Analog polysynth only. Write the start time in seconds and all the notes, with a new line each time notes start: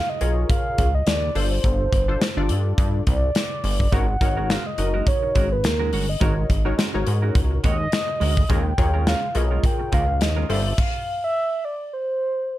0.21 F4 G#4 A#4 C#5
1.35 D4 F4 A4 C5
2.08 D4 F4 A4 C5
2.37 D4 F4 A4 D5
3.92 D#4 F#4 A#4 C#5
4.21 D#4 F#4 A#4 C#5
4.78 D#4 F#4 A#4 D#5
6.21 D#4 F#4 A#4 C#5
6.65 D#4 F#4 A#4 C#5
6.94 D#4 F#4 A#4 C#5
8.50 F4 G#4 A#4 C#5
8.78 F4 G#4 A#4 C#5
9.35 F4 G#4 A#4 C#5
10.49 F4 A4 C5 D5